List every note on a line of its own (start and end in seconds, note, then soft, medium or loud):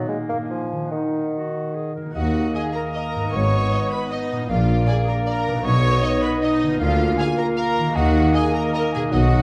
0.00 0.31 A#2 soft
0.00 0.35 A#3 soft
0.00 0.11 B3 medium
0.00 0.47 D#4 soft
0.00 0.52 D#5 soft
0.06 0.18 G#3 soft
0.06 0.74 A#3 soft
0.06 0.49 F#4 soft
0.29 0.84 A#2 soft
0.29 0.38 A#3 medium
0.36 0.75 A#3 soft
0.41 0.88 D4 soft
0.46 0.90 G#4 soft
0.50 0.90 F3 soft
0.50 0.93 G#5 soft
0.72 1.96 D#3 soft
0.77 2.00 A#3 soft
0.81 2.05 D#4 soft
0.86 2.09 F#4 soft
0.91 1.93 D#3 medium
0.91 1.28 D#4 soft
0.91 1.94 F#5 soft
1.34 1.76 F#4 soft
1.75 1.94 G#4 soft
1.95 3.25 D#3 soft
1.95 2.14 A#4 soft
2.02 3.27 A#3 soft
2.06 3.23 D#4 soft
2.10 3.32 F#4 soft
2.10 4.45 D#5 soft
2.15 2.48 D#2 soft
2.15 2.48 D#2 medium
2.15 2.48 D#2 soft
2.15 3.28 A#3 soft
2.15 3.35 A#3 soft
2.15 4.45 D#4 soft
2.15 2.52 F#4 medium
2.15 2.51 F#5 soft
2.15 2.52 F#5 medium
2.54 2.74 G#4 medium
2.54 2.63 D#5 soft
2.54 2.62 G#5 soft
2.54 2.74 G#5 medium
2.73 2.93 A#4 medium
2.73 2.81 A#5 medium
2.73 2.80 A#5 medium
2.93 3.32 A#4 medium
2.93 3.02 D#5 soft
2.93 3.31 A#5 soft
2.93 3.31 A#5 medium
3.15 4.42 G#2 soft
3.20 4.44 B3 soft
3.24 4.47 D#4 soft
3.29 3.65 G#1 medium
3.29 3.65 G#2 medium
3.29 4.49 G#4 soft
3.29 3.89 C#6 medium
3.29 3.90 C#6 medium
3.33 3.65 G#1 medium
3.33 4.49 B3 medium
3.33 4.50 B3 soft
3.33 3.92 C#5 medium
3.72 3.80 D#5 soft
3.90 4.11 B4 medium
3.90 4.09 B5 medium
3.90 4.09 B5 soft
4.10 4.49 D#4 medium
4.10 4.48 D#5 medium
4.10 4.47 D#5 medium
4.10 4.19 D#5 soft
4.32 5.57 A#2 soft
4.36 5.60 A#3 soft
4.41 5.62 D4 soft
4.45 4.81 A#1 medium
4.45 4.81 A#2 medium
4.45 5.64 F4 soft
4.45 4.86 F5 medium
4.45 4.87 F5 soft
4.49 4.82 A#1 medium
4.49 5.66 A#3 medium
4.49 5.65 A#3 medium
4.49 5.63 D4 medium
4.49 4.88 F4 medium
4.49 5.66 D5 medium
4.87 5.08 G#4 medium
4.87 4.96 D5 medium
4.87 4.93 G#5 medium
4.87 4.95 G#5 medium
5.07 5.24 A#4 medium
5.07 5.13 A#5 medium
5.07 5.16 A#5 medium
5.25 5.63 A#4 medium
5.25 5.34 D5 soft
5.25 5.62 A#5 medium
5.25 5.64 A#5 medium
5.47 6.73 B2 medium
5.51 6.75 D#4 soft
5.56 6.77 F#4 soft
5.60 6.78 B3 medium
5.60 6.80 B4 medium
5.60 6.21 C#5 loud
5.60 5.95 C#6 medium
5.64 5.97 B1 medium
5.64 5.96 B2 medium
5.64 6.80 B3 medium
5.64 6.80 D#4 medium
5.64 6.79 D#5 medium
5.64 6.21 C#6 medium
6.04 6.12 D#5 medium
6.22 6.41 B4 medium
6.22 6.29 B5 medium
6.22 6.40 B5 medium
6.41 6.79 D#4 medium
6.41 6.78 D#5 medium
6.41 6.79 D#5 medium
6.41 6.51 D#5 medium
6.63 7.89 D3 medium
6.67 7.82 A#3 medium
6.72 7.93 F4 medium
6.76 7.12 D2 medium
6.76 9.13 A#3 medium
6.76 7.18 F4 medium
6.76 9.13 A#4 medium
6.76 7.16 F5 medium
6.76 7.18 F5 medium
6.76 7.97 F5 medium
6.81 7.13 D2 medium
6.81 7.13 D3 medium
6.81 8.96 A#3 medium
6.81 7.95 F4 medium
7.17 7.26 G#4 medium
7.17 7.27 F5 medium
7.17 7.23 G#5 medium
7.17 7.38 G#5 medium
7.37 7.45 A#4 medium
7.37 7.45 A#5 medium
7.37 7.55 A#5 medium
7.55 7.95 A#4 medium
7.55 7.65 F5 medium
7.55 7.97 A#5 medium
7.55 7.96 A#5 medium
7.78 9.06 D#3 medium
7.83 9.08 A#3 soft
7.87 9.03 D#4 soft
7.92 8.28 D#2 medium
7.92 9.07 F#4 soft
7.92 8.33 F#4 loud
7.92 9.42 D#5 medium
7.92 8.36 F#5 medium
7.92 8.34 F#5 medium
7.96 8.28 D#3 medium
7.96 9.42 D#4 medium
8.34 8.54 G#4 medium
8.34 8.42 D#5 medium
8.34 8.53 G#5 medium
8.53 8.73 A#4 medium
8.53 8.60 A#5 medium
8.53 8.62 A#5 medium
8.72 8.93 A#4 medium
8.72 8.82 D#5 medium
8.72 8.78 A#5 medium
8.72 8.82 A#5 medium
8.91 9.42 B2 medium
8.91 9.02 G#4 medium
8.91 8.97 G#5 medium
8.91 9.02 G#5 medium
9.00 9.42 B3 soft
9.04 9.42 D#4 soft
9.09 9.42 B1 medium
9.09 9.42 B2 medium
9.09 9.42 F#3 medium
9.09 9.42 F#4 soft
9.09 9.42 F#5 medium
9.13 9.42 F#3 medium
9.13 9.42 F#4 medium
9.13 9.21 D#5 soft
9.34 9.42 A#2 soft
9.39 9.42 A#3 soft